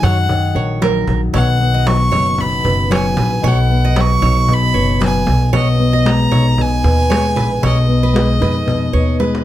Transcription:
Already playing: nylon-string guitar D#3 F#3 D#4 A#4
0.03 upright bass F#2, nylon-string guitar F#4, steel-string acoustic guitar C#5, violin F#5, cajon bass
0.18 cajon slap
0.29 nylon-string guitar D#3, cajon bass
0.44 cajon slap
0.55 upright bass A#1, nylon-string guitar A#4, steel-string acoustic guitar C#5, cajon slap
0.70 cajon slap
0.81 nylon-string guitar F#3, steel-string acoustic guitar A#4, cajon slap
0.95 cajon slap
1.07 upright bass A#1, cajon bass
1.22 cajon slap
1.33 upright bass B1, nylon-string guitar B2, steel-string acoustic guitar C#5, violin F#5, cajon bass
1.48 cajon slap
1.60 nylon-string guitar B3
1.74 steel-string acoustic guitar D#5
1.86 nylon-string guitar F#3, violin C#6, cajon slap
2.02 cajon slap
2.12 upright bass F#1, nylon-string guitar D#4, steel-string acoustic guitar C#5, cajon bass
2.38 nylon-string guitar B2, violin B5, cajon bass
2.53 cajon slap
2.64 upright bass F#1, nylon-string guitar B4, cajon bass
2.80 cajon slap
2.90 nylon-string guitar F#3, steel-string acoustic guitar C#5, violin G#5, cajon slap
3.05 cajon slap
3.17 upright bass A#1, steel-string acoustic guitar B4, cajon bass
3.32 cajon slap
3.42 upright bass B1, nylon-string guitar B2, steel-string acoustic guitar C#5, cajon bass
3.48 violin F#5
3.69 nylon-string guitar B3, cajon slap
3.85 steel-string acoustic guitar D#5
3.96 nylon-string guitar F#3, cajon slap
4.00 violin C#6
4.11 cajon slap
4.22 upright bass B1, nylon-string guitar D#4, steel-string acoustic guitar C#5, cajon bass
4.48 nylon-string guitar B2, cajon bass
4.53 violin B5
4.63 cajon slap
4.74 upright bass F#1, nylon-string guitar B4, steel-string acoustic guitar C#5, cajon slap
4.90 cajon slap
5.00 nylon-string guitar F#3, steel-string acoustic guitar B4, cajon slap
5.05 violin G#5
5.15 cajon slap
5.26 upright bass B1, nylon-string guitar B2, cajon bass
5.42 cajon slap
5.53 nylon-string guitar B2, steel-string acoustic guitar C#5, violin D#5, cajon bass
5.68 cajon slap
5.79 nylon-string guitar B3
5.93 steel-string acoustic guitar D#5
6.04 nylon-string guitar G#3, cajon slap
6.08 violin A#5
6.21 cajon slap
6.31 upright bass B1, nylon-string guitar D#4, steel-string acoustic guitar C#5, cajon bass
6.47 cajon slap
6.58 nylon-string guitar B2, violin G#5, cajon bass
6.72 cajon slap
6.84 upright bass D#2, nylon-string guitar B4, cajon bass
6.99 cajon slap
7.10 nylon-string guitar G#3, steel-string acoustic guitar C#5, cajon slap
7.25 cajon slap
7.36 upright bass A#1, steel-string acoustic guitar B4, cajon bass
7.52 cajon slap
7.62 upright bass B1, nylon-string guitar B2, steel-string acoustic guitar C#5, cajon bass
7.66 violin D#5
7.78 cajon slap
7.89 nylon-string guitar B3
8.03 steel-string acoustic guitar B4
8.13 nylon-string guitar G#3, cajon slap
8.31 cajon slap
8.40 upright bass F2, nylon-string guitar D#4, steel-string acoustic guitar B4, cajon bass
8.57 cajon slap
8.66 nylon-string guitar B2, cajon bass
8.83 cajon slap
8.93 upright bass D#2, nylon-string guitar B4, steel-string acoustic guitar C#5, cajon slap
9.09 cajon slap
9.19 nylon-string guitar G#3, steel-string acoustic guitar B4, cajon slap
9.35 cajon slap

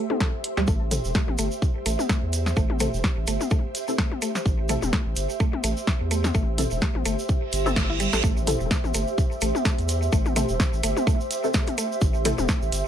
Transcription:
Already playing: ambient pad G4 C5 E5
0.10 synth stab C4 E4 A4, high tom
0.20 synth arpeggio sound A4, kick, snare
0.44 closed hi-hat
0.57 sub bass D2, synth arpeggio sound G3, snare
0.67 sub bass A1, synth arpeggio sound A3, kick, shaker
0.91 synth stab C4 E4 A4, closed hi-hat, mid tom, shaker
1.05 sub bass E1, shaker
1.14 synth arpeggio sound A3, kick, snare, shaker
1.28 sub bass A1, high tom
1.38 sub bass G1, synth arpeggio sound A3, closed hi-hat, shaker
1.51 shaker
1.62 kick, shaker
1.86 sub bass A1, synth arpeggio sound A3, closed hi-hat, shaker
1.99 high tom, shaker
2.09 synth arpeggio sound A3, kick, snare, shaker
2.23 sub bass E2
2.33 closed hi-hat, shaker
2.46 snare, shaker
2.56 sub bass A1, synth arpeggio sound A3, kick, shaker
2.70 high tom
2.80 synth arpeggio sound A3, synth stab C4 E4 A4, closed hi-hat, mid tom, shaker
2.93 sub bass E1, shaker
3.04 kick, snare, shaker
3.17 sub bass A1
3.27 sub bass G1, synth arpeggio sound A3, closed hi-hat, shaker
3.41 high tom, shaker
3.50 synth arpeggio sound A3, kick, shaker
3.75 closed hi-hat, shaker
3.88 synth stab C4 E4 A4, shaker
3.98 synth arpeggio sound A3, kick, snare, shaker
4.12 high tom
4.22 synth arpeggio sound A3, closed hi-hat, shaker
4.35 snare, shaker
4.46 sub bass A1, kick, shaker
4.69 synth arpeggio sound A3, synth stab C4 E4 A4, closed hi-hat, mid tom, shaker
4.82 sub bass E1, high tom, shaker
4.93 synth arpeggio sound A3, kick, snare, shaker
5.06 sub bass A1
5.16 sub bass G1, closed hi-hat, shaker
5.29 shaker
5.40 synth arpeggio sound A3, kick, shaker
5.53 high tom
5.64 sub bass A1, synth arpeggio sound A3, closed hi-hat, shaker
5.77 shaker
5.87 kick, snare, shaker
6.01 sub bass E2
6.11 synth arpeggio sound A3, closed hi-hat, shaker
6.24 snare, high tom, shaker
6.34 sub bass A1, synth arpeggio sound A3, kick, shaker
6.58 synth stab C4 E4 A4, closed hi-hat, mid tom, shaker
6.71 sub bass E1, shaker
6.82 synth arpeggio sound A3, kick, snare, shaker
6.95 sub bass A1, high tom
7.05 sub bass G1, synth arpeggio sound A3, closed hi-hat, shaker
7.19 shaker
7.29 kick, reverse cymbal, shaker
7.52 sub bass G1, closed hi-hat, shaker
7.66 synth stab C4 E4 A4, high tom, shaker
7.76 synth arpeggio sound A3, kick, snare, shaker
7.90 synth arpeggio sound E4
8.00 synth arpeggio sound G3, closed hi-hat, shaker
8.13 sub bass A1, synth arpeggio sound A4, snare, shaker
8.24 sub bass A1, synth arpeggio sound A3, kick, impact, shaker
8.37 shaker
8.47 synth stab C4 E4 A4, closed hi-hat, mid tom, shaker
8.60 sub bass E1, shaker
8.71 synth arpeggio sound A3, kick, snare, shaker
8.84 sub bass A1, high tom, shaker
8.94 sub bass G1, synth arpeggio sound A3, closed hi-hat, shaker
9.07 shaker
9.18 kick, shaker
9.32 shaker
9.41 sub bass A1, synth arpeggio sound A3, closed hi-hat, shaker
9.55 high tom, shaker
9.65 synth arpeggio sound A3, kick, snare, shaker
9.79 sub bass E2, closed hi-hat, shaker
9.89 closed hi-hat, shaker
10.02 shaker
10.12 sub bass A1, synth arpeggio sound A3, kick, shaker
10.25 high tom, shaker
10.36 synth arpeggio sound A3, synth stab C4 E4 A4, closed hi-hat, mid tom, shaker
10.49 sub bass E1, shaker
10.60 kick, snare, shaker
10.73 sub bass A1, shaker
10.83 sub bass G1, synth arpeggio sound A3, closed hi-hat, shaker
10.97 high tom, shaker
11.07 synth arpeggio sound A3, kick, shaker
11.20 shaker
11.31 closed hi-hat, shaker
11.44 synth stab C4 E4 A4, shaker
11.54 synth arpeggio sound A3, kick, snare, shaker
11.67 closed hi-hat, high tom, shaker
11.78 synth arpeggio sound A3, closed hi-hat, shaker
11.92 shaker
12.01 sub bass A1, kick, shaker
12.14 shaker
12.25 synth arpeggio sound A3, synth stab C4 E4 A4, closed hi-hat, mid tom, shaker
12.38 sub bass E1, high tom, shaker
12.48 synth arpeggio sound A3, kick, snare, shaker
12.62 sub bass A1, shaker
12.72 sub bass G1, closed hi-hat, shaker

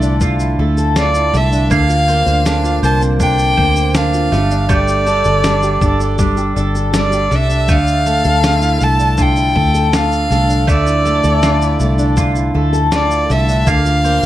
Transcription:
Already playing: fingered electric bass C2, nylon-string guitar D3 A3 E4 A4, mandolin A3 F4 A4 E5, violin D5
0.02 nylon-string guitar D4, shaker
0.21 nylon-string guitar D3, mandolin F4, kick, shaker
0.40 nylon-string guitar E4, shaker
0.59 fingered electric bass D2, nylon-string guitar A3, mandolin A4
0.77 nylon-string guitar A4, shaker
0.96 nylon-string guitar D3, mandolin F4, violin D5, snare, shaker
1.15 nylon-string guitar E4, shaker
1.34 fingered electric bass C2, nylon-string guitar A3, mandolin A4, violin E5, snare, shaker
1.52 nylon-string guitar D4, shaker
1.71 fingered electric bass D2, nylon-string guitar D3, mandolin A#3 F5, violin F5, kick, shaker
1.89 nylon-string guitar F4, shaker
2.08 nylon-string guitar A#3, mandolin C5, shaker
2.26 fingered electric bass D2, nylon-string guitar C5, shaker
2.45 nylon-string guitar D3, mandolin D4, snare, shaker
2.64 nylon-string guitar F4, shaker
2.83 fingered electric bass C2, nylon-string guitar A#3, mandolin C5, violin A5, shaker
3.02 nylon-string guitar C4, shaker
3.20 nylon-string guitar D3, mandolin D4, violin G5, kick, shaker
3.39 nylon-string guitar F4, shaker
3.57 fingered electric bass D2, nylon-string guitar A#3, mandolin C5, kick
3.76 nylon-string guitar C5, shaker
3.95 nylon-string guitar D3, mandolin D4, violin F5, snare, shaker
4.14 nylon-string guitar F4, shaker
4.32 fingered electric bass G1, nylon-string guitar G3, mandolin A3, snare, shaker
4.51 nylon-string guitar D4, shaker
4.69 nylon-string guitar G3, mandolin A3 G5, violin D5, kick, shaker
4.88 nylon-string guitar G4, shaker
5.07 nylon-string guitar D4, mandolin A4, shaker
5.24 fingered electric bass G1, nylon-string guitar A4, shaker
5.44 nylon-string guitar G3, mandolin D4, snare, shaker
5.63 nylon-string guitar G4, shaker
5.81 fingered electric bass G1, nylon-string guitar D4, mandolin A4, kick, shaker
6.00 nylon-string guitar D4, shaker
6.19 nylon-string guitar G3, mandolin D4, kick, shaker
6.37 nylon-string guitar G4, shaker
6.56 fingered electric bass G1, nylon-string guitar D4, mandolin A4, shaker
6.75 nylon-string guitar A4, shaker
6.94 nylon-string guitar G3, mandolin D4, violin D5, snare, shaker
7.12 nylon-string guitar G4, shaker
7.31 fingered electric bass C2, nylon-string guitar D4, mandolin A4, snare, shaker
7.35 violin E5
7.50 nylon-string guitar D4, shaker
7.68 fingered electric bass D2, nylon-string guitar D3, mandolin A3, violin F5, kick, shaker
7.87 shaker
8.06 nylon-string guitar A3, mandolin A4, shaker
8.24 fingered electric bass D2, nylon-string guitar A4, shaker
8.43 nylon-string guitar D3, mandolin F4, snare, shaker
8.62 nylon-string guitar E4, shaker
8.81 fingered electric bass C2, nylon-string guitar A3, mandolin A4, violin A5, shaker
8.99 nylon-string guitar D4, shaker
9.18 nylon-string guitar D3, mandolin F4, kick, shaker
9.22 violin G5
9.36 nylon-string guitar E4, shaker
9.55 fingered electric bass D2, nylon-string guitar A3, mandolin A4, kick
9.75 nylon-string guitar A4, shaker
9.92 nylon-string guitar D3, mandolin F4, snare, shaker
9.97 violin F5
10.12 shaker
10.30 fingered electric bass C2, nylon-string guitar A3, mandolin A4, snare, shaker
10.48 nylon-string guitar D4, shaker
10.67 fingered electric bass D2, nylon-string guitar D3, mandolin A3 E5, violin D5, kick, shaker
10.86 nylon-string guitar E4, shaker
11.05 nylon-string guitar A3, mandolin A4, shaker
11.24 fingered electric bass D2, nylon-string guitar A4, shaker
11.43 nylon-string guitar D3, mandolin F4, snare, shaker
11.61 nylon-string guitar E4, shaker
11.80 fingered electric bass C2, nylon-string guitar A3, mandolin A4, shaker
11.99 nylon-string guitar D4, shaker
12.17 nylon-string guitar D3, mandolin F4, kick, shaker
12.36 nylon-string guitar E4, shaker
12.54 fingered electric bass D2, nylon-string guitar A3, mandolin A4
12.73 nylon-string guitar A4, shaker
12.91 nylon-string guitar D3, mandolin F4, violin D5, snare, shaker
13.10 nylon-string guitar E4, shaker
13.29 fingered electric bass C2, nylon-string guitar A3, mandolin A4, violin E5, snare, shaker
13.48 nylon-string guitar D4, shaker
13.67 fingered electric bass D2, nylon-string guitar D3, mandolin A#3 F5, violin F5, kick, shaker
13.86 nylon-string guitar F4, shaker
14.04 nylon-string guitar A#3, mandolin C5, shaker
14.23 shaker

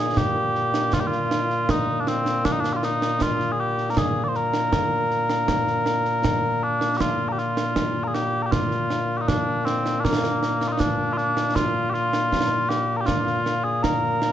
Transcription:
Already playing: bagpipes A#2 A#3 G#4
0.17 bagpipes G4, concert bass drum, snare
0.55 snare
0.74 snare
0.93 bagpipes F4, concert bass drum, snare
1.00 bagpipes G4
1.07 bagpipes F4
1.12 snare
1.31 snare
1.50 snare
1.69 bagpipes D#4, concert bass drum, snare
2.00 bagpipes D4
2.07 bagpipes C4, snare
2.26 snare
2.45 bagpipes D4, concert bass drum, snare
2.52 bagpipes D#4
2.60 bagpipes D4
2.64 snare
2.73 bagpipes F4 G4
2.83 bagpipes D#4, snare
3.02 snare
3.21 bagpipes F4, concert bass drum, snare
3.40 snare
3.52 bagpipes G#4
3.60 bagpipes G4
3.78 snare
3.90 bagpipes A#4
3.97 bagpipes G#4, concert bass drum, snare
4.24 bagpipes D5
4.28 bagpipes C5
4.35 bagpipes A#4, snare
4.54 snare
4.73 concert bass drum, snare
5.11 snare
5.30 snare
5.48 concert bass drum, snare
5.67 snare
5.86 snare
6.05 snare
6.24 concert bass drum, snare
6.63 bagpipes D4
6.81 snare
6.97 bagpipes F4 G4, concert bass drum, snare
7.29 bagpipes G4 A#4
7.38 bagpipes F4, snare
7.57 snare
7.76 concert bass drum, snare
8.04 bagpipes G#4 A#4
8.14 bagpipes G4, snare
8.42 bagpipes G4 A#4
8.52 bagpipes F4, concert bass drum, snare
8.71 snare
8.90 snare
9.17 bagpipes D#4 G4
9.28 bagpipes D4, concert bass drum, snare
9.65 bagpipes C4, snare
9.86 snare
10.00 bagpipes A#3 D4
10.05 concert bass drum, snare
10.24 snare
10.43 snare
10.61 snare
10.68 bagpipes D#4 F4
10.80 bagpipes D4, concert bass drum, snare
11.13 bagpipes F4
11.17 bagpipes D4, snare
11.37 snare
11.55 bagpipes F4, concert bass drum, snare
11.90 bagpipes F4 G4
11.95 snare
12.13 snare
12.32 concert bass drum, snare
12.69 bagpipes G4, snare
12.97 bagpipes A#4
13.01 bagpipes G4
13.06 bagpipes F4, concert bass drum, snare
13.27 snare
13.46 snare
13.64 bagpipes G#4
13.83 bagpipes A#4, concert bass drum, snare
14.22 snare

